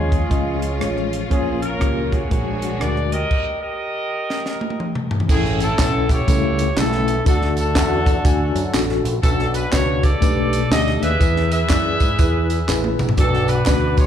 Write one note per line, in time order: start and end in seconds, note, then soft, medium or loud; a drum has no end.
0.00 0.23 D#2 medium
0.00 2.28 F3 medium
0.00 0.20 G#3 medium
0.00 1.27 G#3 medium
0.00 0.20 C#4 medium
0.00 1.08 C#4 medium
0.00 2.28 C#4 medium
0.00 0.20 F4 medium
0.00 1.08 F4 medium
0.00 2.28 F4 medium
0.00 1.08 G#4 medium
0.00 1.28 G#4 medium
0.00 2.28 C#5 medium
0.00 0.20 D#5 medium
0.00 2.28 F5 medium
0.00 2.28 C#6 medium
0.12 kick medium
0.12 closed hi-hat medium
0.30 0.81 C#2 medium
0.30 0.70 G#3 medium
0.30 0.70 C#4 medium
0.30 0.70 F4 medium
0.30 0.70 D#5 medium
0.30 kick loud
0.30 closed hi-hat medium
0.62 closed hi-hat medium
0.79 1.23 A1 medium
0.79 1.20 G#3 medium
0.79 1.20 C#4 medium
0.79 1.20 F4 medium
0.79 1.20 C#5 medium
0.79 cross-stick medium
0.79 closed hi-hat medium
0.97 cross-stick soft
1.13 closed hi-hat medium
1.30 1.74 A#1 medium
1.30 2.08 A#2 medium
1.30 1.70 A#3 medium
1.30 3.28 A#3 medium
1.30 1.70 C#4 medium
1.30 1.61 C#4 medium
1.30 1.70 F4 medium
1.30 1.61 F4 medium
1.30 1.60 G#4 medium
1.30 3.29 A#4 medium
1.30 1.70 C#5 medium
1.30 kick loud
1.30 closed hi-hat medium
1.62 2.27 C#4 medium
1.62 2.27 F4 medium
1.62 2.12 A#4 medium
1.62 closed hi-hat medium
1.80 2.24 C#2 medium
1.80 2.20 A#3 medium
1.80 2.20 C#4 medium
1.80 2.20 F4 medium
1.80 2.20 G4 medium
1.80 kick medium
1.80 cross-stick medium
1.80 closed hi-hat medium
2.11 3.08 F#4 medium
2.11 3.08 G#4 medium
2.11 2.80 C#5 medium
2.11 kick medium
2.11 closed hi-hat medium
2.30 2.74 A#1 medium
2.30 3.08 A#2 medium
2.30 2.70 G#3 medium
2.30 3.31 G#3 medium
2.30 2.70 D4 medium
2.30 3.31 D4 medium
2.30 2.70 F#4 medium
2.30 3.30 F#4 medium
2.30 2.70 A#4 medium
2.30 3.30 F#5 medium
2.30 3.30 G#5 soft
2.30 kick medium
2.30 closed hi-hat medium
2.62 closed hi-hat medium
2.80 3.23 D2 medium
2.80 3.20 G#3 medium
2.80 3.20 D4 medium
2.80 3.20 F#4 medium
2.80 3.21 A#4 medium
2.80 3.12 D5 loud
2.80 cross-stick medium
2.80 closed hi-hat medium
2.96 cross-stick soft
3.12 3.61 G4 medium
3.12 3.61 A#4 medium
3.12 3.60 D#5 loud
3.12 closed hi-hat medium
3.31 kick medium
3.31 crash medium
3.61 5.07 G4 medium
3.61 5.07 A#4 medium
3.61 5.07 D#5 medium
4.30 snare medium
4.46 snare soft
4.61 high tom medium
4.70 high tom medium
4.80 mid tom medium
4.95 mid tom medium
5.11 floor tom medium
5.20 floor tom medium
5.28 5.71 A1 loud
5.28 6.05 A2 medium
5.28 5.68 C#4 medium
5.28 5.61 C#4 medium
5.28 5.68 E4 medium
5.28 5.61 E4 medium
5.28 5.58 G#4 medium
5.28 5.69 A4 medium
5.28 kick loud
5.28 crash loud
5.28 tambourine medium
5.45 snare soft
5.60 6.25 C#4 medium
5.60 6.09 E4 medium
5.60 6.11 A4 loud
5.60 closed hi-hat medium
5.60 tambourine medium
5.77 6.21 B1 loud
5.77 6.17 C#4 medium
5.77 6.17 E4 medium
5.77 6.18 A4 medium
5.77 kick medium
5.77 snare loud
5.77 clap loud
5.77 closed hi-hat medium
5.77 tambourine loud
6.09 6.77 E4 medium
6.09 7.05 G4 medium
6.09 6.78 C#5 loud
6.09 kick loud
6.09 closed hi-hat medium
6.09 tambourine medium
6.27 6.70 C#2 loud
6.27 7.04 C#3 medium
6.27 6.67 G3 medium
6.27 6.67 A3 medium
6.27 6.67 C#4 medium
6.27 6.67 E4 medium
6.27 6.68 A4 medium
6.27 kick loud
6.27 closed hi-hat loud
6.27 tambourine medium
6.59 closed hi-hat medium
6.59 tambourine medium
6.76 7.19 B1 loud
6.76 7.16 G3 medium
6.76 7.16 A3 medium
6.76 7.16 C#4 medium
6.76 7.16 E4 medium
6.76 7.24 E4 medium
6.76 6.85 G#4 medium
6.76 7.27 A4 loud
6.76 snare loud
6.76 clap loud
6.76 closed hi-hat loud
6.76 tambourine loud
6.84 7.19 A4 medium
6.92 snare soft
7.08 closed hi-hat medium
7.08 tambourine soft
7.25 7.76 D2 loud
7.25 8.02 D3 medium
7.25 7.65 D4 medium
7.25 7.57 D4 medium
7.25 7.65 F#4 medium
7.25 7.57 F#4 medium
7.25 7.66 A4 medium
7.25 7.56 A4 medium
7.25 kick loud
7.25 closed hi-hat loud
7.25 tambourine medium
7.42 snare soft
7.57 9.02 D4 medium
7.57 9.02 F#4 medium
7.57 9.02 A4 medium
7.57 closed hi-hat medium
7.57 tambourine medium
7.74 8.18 E2 medium
7.74 8.14 D4 medium
7.74 8.14 F#4 medium
7.74 8.15 A4 medium
7.74 kick loud
7.74 snare loud
7.74 clap loud
7.74 closed hi-hat medium
7.74 tambourine loud
8.06 kick loud
8.06 closed hi-hat medium
8.06 tambourine medium
8.24 8.51 D2 medium
8.24 8.63 D4 medium
8.24 8.64 F#4 medium
8.24 8.64 G#5 loud
8.24 kick loud
8.24 closed hi-hat loud
8.24 tambourine medium
8.55 8.71 F#2 loud
8.55 closed hi-hat medium
8.55 tambourine medium
8.74 9.00 A1 loud
8.74 9.13 D4 loud
8.74 9.13 F#4 medium
8.74 9.14 A4 loud
8.74 snare loud
8.74 clap loud
8.74 closed hi-hat loud
8.74 tambourine loud
8.89 snare soft
9.04 9.20 A#1 loud
9.04 closed hi-hat medium
9.04 tambourine soft
9.23 9.65 B1 loud
9.23 9.99 B2 medium
9.23 9.31 C#4 medium
9.23 10.18 D4 medium
9.23 10.18 F#4 medium
9.23 9.62 F#4 medium
9.23 9.52 A4 medium
9.23 9.63 B4 medium
9.23 kick loud
9.23 closed hi-hat loud
9.23 tambourine medium
9.29 9.65 D4 medium
9.39 snare soft
9.54 9.73 B4 medium
9.54 closed hi-hat medium
9.54 tambourine medium
9.72 10.15 C#2 loud
9.72 10.11 D4 medium
9.72 10.11 F#4 medium
9.72 10.12 B4 medium
9.72 10.03 C#5 medium
9.72 kick medium
9.72 snare loud
9.72 clap loud
9.72 closed hi-hat medium
9.72 tambourine loud
10.03 10.98 G4 medium
10.03 10.98 A4 medium
10.03 10.71 D5 loud
10.03 kick loud
10.03 closed hi-hat medium
10.03 tambourine medium
10.21 10.64 B1 loud
10.21 10.98 B2 medium
10.21 10.60 A3 medium
10.21 10.61 D4 medium
10.21 10.61 D#4 medium
10.21 10.61 G4 medium
10.21 10.61 B4 medium
10.21 kick loud
10.21 closed hi-hat loud
10.21 tambourine medium
10.53 closed hi-hat medium
10.53 tambourine medium
10.70 10.97 D2 loud
10.70 11.10 A3 medium
10.70 11.10 D4 medium
10.70 11.10 D#4 medium
10.70 11.10 G4 medium
10.70 11.10 D5 medium
10.70 11.00 D#5 loud
10.70 snare loud
10.70 clap loud
10.70 closed hi-hat medium
10.70 tambourine loud
10.87 snare soft
11.02 11.18 D#2 medium
11.02 11.51 G#4 medium
11.02 11.51 B4 medium
11.02 11.51 E5 loud
11.02 closed hi-hat medium
11.02 tambourine soft
11.19 11.62 E2 loud
11.19 11.96 E3 medium
11.19 11.59 E4 medium
11.19 11.59 G#4 medium
11.19 11.60 B4 medium
11.19 kick loud
11.19 closed hi-hat loud
11.19 tambourine medium
11.37 snare soft
11.52 12.95 G#4 medium
11.52 12.95 B4 medium
11.52 12.95 E5 loud
11.52 closed hi-hat medium
11.52 tambourine medium
11.69 11.96 F#2 loud
11.69 12.08 E4 medium
11.69 12.09 G#4 medium
11.69 12.09 D5 medium
11.69 kick medium
11.69 snare loud
11.69 clap loud
11.69 closed hi-hat medium
11.69 tambourine loud
12.00 12.16 G#2 medium
12.00 kick loud
12.00 closed hi-hat medium
12.00 tambourine medium
12.19 12.61 E2 medium
12.19 12.58 E4 loud
12.19 12.58 G#4 medium
12.19 12.59 B4 loud
12.19 kick loud
12.19 closed hi-hat loud
12.19 tambourine medium
12.50 closed hi-hat medium
12.50 tambourine medium
12.68 12.95 A1 medium
12.68 13.07 E4 medium
12.68 13.07 G#4 medium
12.68 13.08 B4 loud
12.68 snare medium
12.68 clap loud
12.68 tambourine loud
12.84 high tom medium
12.99 13.15 A#1 medium
12.99 mid tom loud
12.99 tambourine soft
13.09 floor tom loud
13.17 13.60 B1 loud
13.17 13.94 B2 medium
13.17 13.56 D4 medium
13.17 14.07 D4 medium
13.17 13.57 F#4 medium
13.17 14.07 F#4 medium
13.17 13.47 A4 loud
13.17 13.26 A4 medium
13.17 14.07 B4 medium
13.17 14.07 D5 medium
13.17 14.07 F#5 medium
13.17 14.07 D6 medium
13.17 kick loud
13.17 closed hi-hat loud
13.17 tambourine medium
13.24 13.60 B4 medium
13.34 snare soft
13.48 13.66 B4 medium
13.48 closed hi-hat medium
13.48 tambourine medium
13.66 14.07 D2 loud
13.66 14.05 D4 medium
13.66 14.06 F#4 medium
13.66 14.06 B4 loud
13.66 13.96 B4 loud
13.66 kick medium
13.66 snare loud
13.66 clap loud
13.66 closed hi-hat medium
13.66 tambourine loud
13.97 14.07 F4 medium
13.97 14.07 G#4 medium
13.97 14.07 C#5 loud
13.97 kick loud
13.97 closed hi-hat medium
13.97 tambourine medium